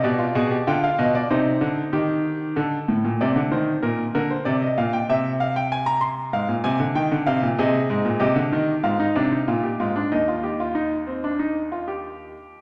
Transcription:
<<
  \new Staff \with { instrumentName = "Grand piano" } { \time 4/4 \key c \minor \tempo 4 = 95 << { d''4 g''16 f''16 ees''16 d''16 c''2 | a'4 d''8 c''8 bes'8 bes'16 c''16 d''16 ees''16 f''16 g''16 | e''8 f''16 g''16 aes''16 bes''16 c'''8 f''8 aes''8 g''8 f''8 | \key ees \major ees''4 ees''4 f''2 |
ees''2.~ ees''8 r8 | } \\ { g'16 f'16 aes'16 g'16 f'4 ees'4 g'4 | r1 | r1 | aes'4 g'4 f'16 ees'16 d'16 ees'16 f'16 g'16 f'16 d'16 |
ees'16 f'16 g'16 f'16 ees'8 c'16 d'16 ees'8 f'16 g'4~ g'16 | } >> }
  \new Staff \with { instrumentName = "Grand piano" } { \clef bass \time 4/4 \key c \minor b,8 b,8 d8 b,8 c8 d8 ees4 | d8 a,16 bes,16 c16 d16 ees8 bes,8 d8 c8 bes,8 | c2 aes,16 bes,16 c16 d16 ees16 d16 c16 bes,16 | \key ees \major c8 aes,16 bes,16 c16 d16 ees8 aes,8 c8 bes,8 aes,8 |
ees,2.~ ees,8 r8 | }
>>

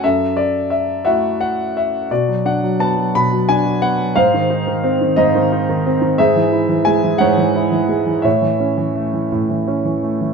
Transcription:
<<
  \new Staff \with { instrumentName = "Grand piano" } { \time 6/8 \key b \dorian \tempo 4. = 58 << { e''8 d''8 e''8 <e'' fis''>8 fis''8 e''8 | d''8 fis''8 a''8 b''8 gis''8 fis''8 | eis''4. dis''4 r8 | e''4 gis''8 fis''4. |
e''4. r4. | } \\ { a'4. r4. | fis'4. r4. | bis'4. r4. | gis'4. cis''4. |
cis''4. r4. | } >> }
  \new Staff \with { instrumentName = "Grand piano" } { \clef bass \time 6/8 \key b \dorian fis,4. <a e' fis'>4. | b,16 fis16 d'16 fis16 b16 fis16 b,16 fis16 d'16 fis16 b16 fis16 | gis,16 dis16 dis'16 dis16 bis16 dis16 gis,16 dis16 dis'16 dis16 bis16 dis16 | gis,16 e16 e'16 e16 gis16 e16 gis,16 e16 e'16 e16 gis16 e16 |
a,16 e16 cis'16 e16 a16 e16 a,16 e16 cis'16 e16 a16 e16 | }
>>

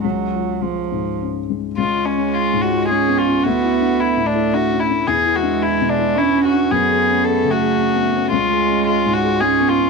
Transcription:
<<
  \new Staff \with { instrumentName = "Violin" } { \time 3/4 \key cis \phrygian \tempo 4 = 110 r2. | eis'8 cis'8 eis'8 fis'8 gis'8 eis'8 | fis'4 e'8 d'8 fis'8 e'8 | gis'8 fis'8 e'8 d'8 e'8 fis'8 |
gis'4 a'8 fis'4. | eis'4 eis'8 fis'8 gis'8 eis'8 | }
  \new Staff \with { instrumentName = "Harmonium" } { \time 3/4 \key cis \phrygian << { r2. | cis''2. | e''2.~ | e''2. |
cis''2.~ | cis''2. | } \\ { r2. | eis'2. | e'2.~ | e'2. |
gis'2. | eis'2. | } >> }
  \new Staff \with { instrumentName = "Harmonium" } { \time 3/4 \key cis \phrygian r2. | gis2. | a2. | b2. |
a2. | gis2. | }
  \new Staff \with { instrumentName = "Felt piano" } { \time 3/4 \key cis \phrygian <cis, gis>8 eis'8 gis8 gis,8 cis'8 gis8 | \tuplet 3/2 { cis,8 eis'8 cis'8 eis'8 gis,8 eis'8 cis'8 b8 cis'8 } | \tuplet 3/2 { d,8 e'8 d'8 e'8 a,8 e'8 d'8 cis'8 d'8 } | \tuplet 3/2 { e,8 e'8 d'8 e'8 b,8 e'8 d'8 cis'8 d'8 } |
\tuplet 3/2 { fis,8 gis'8 cis'8 gis'8 cis8 gis'8 cis'8 b8 cis'8 } | \tuplet 3/2 { cis,8 gis'8 cis'8 gis'8 gis,8 gis'8 cis'8 b8 cis'8 } | }
  \new Staff \with { instrumentName = "Cello" } { \time 3/4 \key cis \phrygian fis4 eis4 r4 | r8 gis4. cis'4 | b4. a4 r8 | r8 gis4. cis'4 |
b4. a4 r8 | gis2 cis'4 | }
>>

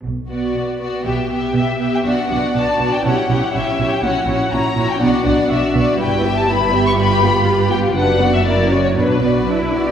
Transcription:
<<
  \new Staff \with { instrumentName = "Violin section" } { \time 2/4 \key b \minor \tempo 4 = 121 << { r2 | r4 e''8. g''16 | fis''4 a''8. g''16 | fis''4 e''8. g''16 |
fis''4 ais''8. g''16 | fis''4 e''8 r8 | g''8. a''16 b''8. cis'''16 | b''4. g''8 |
fis''8. e''16 d''8. cis''16 | b'4. r8 | } \\ { r8 d''4 d''8 | e''8 e''8 r8 e''8 | r2 | r2 |
r2 | r2 | r2 | r2 |
r2 | r2 | } >> }
  \new Staff \with { instrumentName = "Violin section" } { \time 2/4 \key b \minor r8 fis'4 fis'8 | g'8 g'4 g'8 | <fis' d''>8 <fis' d''>8 <fis' d''>8 <fis' d''>8 | <g' cis''>8 <g' cis''>8 <g' cis''>8 <g' cis''>8 |
<fis' cis''>8 <fis' cis''>8 <fis' cis''>8 <fis' cis''>8 | <fis' d''>8 <fis' d''>8 <fis' d''>8 <fis' d''>8 | <e' b'>8 <g' e''>8 <e' b'>8 <g' e''>8 | <g' b'>8 <f' g'>8 <g' b'>8 <f' g'>8 |
<d' b'>8 <fis' d''>8 <e' ais'>8 <fis' cis''>8 | <d' b'>8 <fis' d''>8 <d' b'>8 <fis' d''>8 | }
  \new Staff \with { instrumentName = "Viola section" } { \time 2/4 \key b \minor r8 b4 b8 | b8 b4 b8 | <b d'>8 <b d'>8 <b d'>8 <b d'>8 | <cis' e'>8 <cis' e'>8 <cis' e'>8 <cis' e'>8 |
<cis' e'>8 <cis' e'>8 <cis' e'>8 <cis' e'>8 | <b d'>8 <b d'>8 <b d'>8 <b d'>8 | <g e'>8 <b g'>8 <g e'>8 <b g'>8 | <g f'>8 <b g'>8 <g f'>8 <b g'>8 |
<fis d'>8 b8 <ais e'>8 <cis' fis'>8 | <fis d'>8 b8 <fis d'>8 b8 | }
  \new Staff \with { instrumentName = "Cello section" } { \clef bass \time 2/4 \key b \minor b,4 b,4 | b,4 b,4 | b,8 b,8 b,8 b,8 | b,8 b,8 b,8 b,8 |
ais,8 ais,8 ais,8 ais,8 | b,8 b,8 b,8 b,8 | g,2~ | g,2 |
fis,2 | b,4 e'8. g'16 | }
  \new Staff \with { instrumentName = "Double bass section" } { \clef bass \time 2/4 \key b \minor b,,4 r4 | b,,4 r4 | b,,8 b,,8 b,,8 b,,8 | b,,8 b,,8 b,,8 b,,8 |
ais,,8 ais,,8 ais,,8 ais,,8 | b,,8 b,,8 b,,8 b,,8 | g,,2~ | g,,2 |
fis,,2 | b,,4. r8 | }
>>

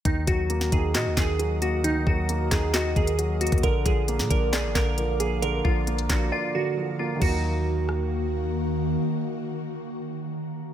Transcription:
<<
  \new Staff \with { instrumentName = "Ambient pad" } { \time 4/4 \key ees \minor \tempo 4 = 134 << { <ges'' ees'''>1~ | <ges'' ees'''>1 | <f'' d'''>1~ | <f'' d'''>1 |
<ees bes ges'>1~ | <ees bes ges'>1 | } \\ { bes'1~ | bes'1~ | bes'1~ | bes'1 |
r1 | r1 | } >> }
  \new Staff \with { instrumentName = "Synth keys" } { \time 4/4 \key ees \minor ees'8 ges'4 aes'8 ges'8 aes'4 ges'8 | ees'8 ges'4 aes'8 ges'8 aes'4 ges'8 | bes'8 aes'4 bes'8 aes'8 bes'4 aes'8 | bes'8 f'4 ges'8 f'8 ges'4 f'8 |
ges'2. r4 | r1 | }
  \new Staff \with { instrumentName = "Felt piano" } { \clef bass \time 4/4 \key ees \minor ees8 ges8 bes8 ees'8 ees''8 ees8 ges8 bes8 | ees8 ges8 bes8 ees'8 ees''8 ees8 ges8 bes8 | d8 f8 bes8 d'8 d''8 d8 f8 bes8 | d8 f8 bes8 d'8 d''8 d8 f8 bes8 |
<ees ges bes ees'>1~ | <ees ges bes ees'>1 | }
  \new Staff \with { instrumentName = "808-style bass" } { \clef bass \time 4/4 \key ees \minor ees,8 ees,4 ees,8 bes,16 ees,16 ees,4. | d,8 ees,4 ees,4 ees,4~ ees,16 ees,16 | bes,,8 bes,,8. bes,16 bes,,8. aes,,16 bes,,4.~ | bes,,8 bes,,4 bes,,8 r2 |
ees,1 | r1 | }
  \new DrumStaff \with { instrumentName = "Drums" } \drummode { \time 4/4 <hh bd>8 <hh bd>8 hh16 sn16 <hh bd>8 <hc hh sn>8 <hc hh bd sn>8 hh8 hh8 | hh8 bd8 hh8 <hc hh bd sn>8 <hc hh sn>8 <hh bd>16 hh16 hh8 <hh hho>32 hh32 <hh bd>32 hh32 | <hh bd>8 <hh bd>8 hh16 sn16 <hh bd>8 <hc hh sn>8 <hc hh bd sn>8 hh8 hh8 | hh8 bd8 hh16 hh16 <hc hh bd sn>8 r4 r4 |
<cymc bd>4 r8 ss8 r4 r4 | r4 r4 r4 r4 | }
>>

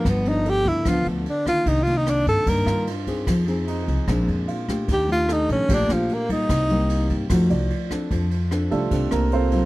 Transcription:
<<
  \new Staff \with { instrumentName = "Grand piano" } { \time 4/4 \key c \dorian \tempo 4 = 149 r4 a'4~ a'16 r4. r16 | r2 r8 f'4~ f'16 r16 | r4 ees'16 aes'4~ aes'16 r8 f'4~ | f'16 r8. a'4~ a'16 r4. r16 |
r2 r8 d''4~ d''16 r16 | \key f \major r4. <f' a'>4 <bes bes'>8 <c' f' a' c''>4 | }
  \new Staff \with { instrumentName = "Grand piano" } { \time 4/4 \key c \dorian r1 | r1 | r1 | r1 |
r1 | \key f \major r4. <g a d'>8 r2 | }
  \new Staff \with { instrumentName = "Tenor saxophone" } { \time 4/4 \key c \dorian b8 ees'8 g'8 e'8 f'8 a8 d'8 f'8 | \tuplet 3/2 { ees'8 f'8 ees'8 } d'8 a'8 bes'4 r4 | r1 | g'8 f'8 ees'8 des'8 d'8 f8 bes8 ees'8~ |
ees'2 r2 | \key f \major r1 | }
  \new Staff \with { instrumentName = "Nylon-string guitar" } { \time 4/4 \key c \dorian << { <f ces' d'>8 <f b d'>4. <f b d'>4 r8 <ees bes d'>8~ | <ees bes d'>8 <ees bes d'>4. <ees bes d'>4 r8 <c' ees' aes'>8~ | <c' ees' aes'>8 <c' ees' aes'>4. <aes c' d'>4. <a d' g'>8~ | <a d' g'>8 <a d' g'>4. <a d' g'>4. <g bes ees'>8~ |
<g bes ees'>8 <g bes ees'>4. <a ees' ges'>4 r8 <c' d' a'>8~ | \key f \major <c' d' a'>8 r8 <c' d' a'>8 r8 <c' d' a'>4 r8 <ges c' f'>8 | } \\ { g,2 d2 | c2 g,2 | f2 bes,2 | ees2 bes,2 |
c2 f2 | f2 c2 | } >> }
  \new Staff \with { instrumentName = "Upright bass" } { \clef bass \time 4/4 \key c \dorian g,,4. d,16 r16 d,8 d,8 r4 | c,4. g,16 r16 g,8 g,8 r4 | f,4. c,16 r16 bes,,8 f,8 r4 | ees,4. bes,,16 r16 bes,,8 bes,,8 r4 |
c,4. g,16 r16 f,8 c,8 r4 | \key f \major f,4. c,8 c,8 c,4. | }
  \new DrumStaff \with { instrumentName = "Drums" } \drummode { \time 4/4 <bd cymr ss>8 cymr8 cymr8 <bd cymr>8 <bd cymr ss>8 cymr8 cymr8 <bd cymr ss>8 | <bd cymr>8 cymr8 <cymr ss>8 <bd cymr>8 <bd cymr>8 <cymr ss>8 cymr8 <bd cymr>8 | <bd cymr ss>8 cymr8 cymr8 <bd cymr>8 <bd cymr ss>8 cymr8 cymr8 <bd cymr ss>8 | <bd cymr>8 cymr8 <cymr ss>8 <bd cymr>8 <bd cymr>8 <cymr ss>8 cymr8 <bd cymr>8 |
<bd cymr ss>8 cymr8 cymr8 <bd cymr>8 <bd cymr ss>8 cymr8 cymr8 <bd cymr ss>8 | <bd cymr>8 cymr8 <cymr ss>8 <bd cymr>8 <bd cymr>8 <cymr ss>8 cymr8 <bd cymr>8 | }
>>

